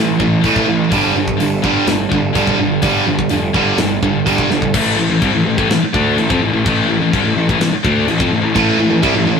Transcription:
Already playing: A1 A2 E3
0.18 A1 A2 E3, kick
0.41 A1 A2 E3 A3, kick, open hi-hat
0.56 kick
0.65 A1 A2 E3
0.89 G1 G2 D3 G3, kick, open hi-hat
1.13 G1 G2 D3
1.28 kick
1.37 G1 G2 D3, open hi-hat
1.62 G2 D3 G3, kick
1.85 G1 G2 D3, snare, open hi-hat
2.09 G1 G2 D3, kick
2.33 G1 G2 D3 G3, kick, open hi-hat
2.47 kick
2.57 G1 G2 D3
2.82 G1 G2 D3 G3, kick, open hi-hat
3.06 G1 G2 D3
3.19 kick
3.29 F1 G2 D3, open hi-hat
3.53 G1 G2 D3 G3, kick
3.78 G1 G2 D3, snare, open hi-hat
4.02 G1 G2 D3, kick
4.26 G1 G2 D3 G3, kick, open hi-hat
4.38 kick
4.50 G1 G2 D3, snare
4.62 kick
4.74 A1 A2 E3 A3, kick, crash
4.98 A1 A2 E3
5.10 A1 A2 E3
5.21 C2 C3 G3, kick, crash
5.34 A1 A2 E3
5.46 A1 A2 E3
5.58 A1 A2 E3, kick
5.69 A1 A2 E3, snare, crash
5.81 muted picked electric bass stroke, muted distorted electric guitar stroke
5.93 D2 D3 A3 D4, kick
6.17 A1 A2 E3, crash
6.29 F2 F3 C4, kick
6.40 A1 A2 E3
6.53 A1 A2 E3
6.65 A1 A2 E3 A3, kick, crash
6.88 A1 A2 E3
7.00 A1 A2 E3
7.13 C2 C3 G3, kick, crash
7.24 A1 A2 E3
7.35 A1 A2 E3
7.49 A1 A2 E3, kick
7.59 A1 A2 E3, snare, crash
7.71 muted picked electric bass stroke, muted distorted electric guitar stroke
7.83 D2 D3 A3 D4, kick
8.06 A1 A2 E3, crash
8.18 F2 F3 C4, kick
8.30 A1 A2 E3
8.42 A1 A2 E3
8.54 A1 A2 E3 A3, kick, crash
8.78 A1 A2 E3
8.88 A1 A2 E3
9.02 C2 C3 G3, kick, crash
9.14 A1 A2 E3
9.26 A1 A2 E3

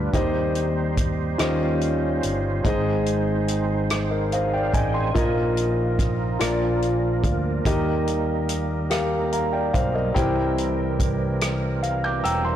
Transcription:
Already playing: D2 G2 G3 D4 F4 G4 B4 D5 G5
0.13 D#2 D#3 G3 C4 D#4 G4 C5 D#5, kick, closed hi-hat
0.55 closed hi-hat
0.97 kick, closed hi-hat
1.38 D#2 D#3 G3 C#4 F4 G4 C5 D#5, cross-stick, closed hi-hat
1.81 closed hi-hat
2.23 G1, closed hi-hat
2.64 G#1 G#2 G#3 C4 D#4 G#4 C5 D#5, kick, closed hi-hat
3.06 closed hi-hat
3.48 closed hi-hat
3.90 cross-stick, closed hi-hat
4.11 A#4 D#5
4.32 C5 D#5 F5, closed hi-hat
4.53 D5 F5 G5
4.73 A1 D#5 G5 G#5, kick, closed hi-hat
4.94 G5 G#5 C6
5.14 A#1 A#2 F3 A#3 D#4 F4 A#4 D#5, kick, closed hi-hat
5.57 closed hi-hat
5.99 kick, cross-stick, closed hi-hat
6.39 A#1 A#2 F3 A#3 D4 F4 A#4 D5, cross-stick, closed hi-hat
6.82 closed hi-hat
7.24 D2, kick, closed hi-hat
7.65 D#2 D#3 F#3 A#3 D#4 G4 A#4 D#5, kick, closed hi-hat
7.72 G3
8.07 closed hi-hat
8.49 closed hi-hat
8.90 G4 A#4 F5, cross-stick, closed hi-hat
9.32 F5 A#5, closed hi-hat
9.53 D5 G5
9.74 B1 C5 F5, kick, closed hi-hat
9.95 A#4 D#5
10.14 C2 C3 E3 G3 C4 E4 G4 A#4 C5 G5, kick, closed hi-hat
10.58 closed hi-hat
11.00 kick, closed hi-hat
11.41 cross-stick, closed hi-hat
11.83 F5, closed hi-hat
12.04 D6 G6
12.24 E1 G5 A#5 E6, closed hi-hat
12.45 G5 C6

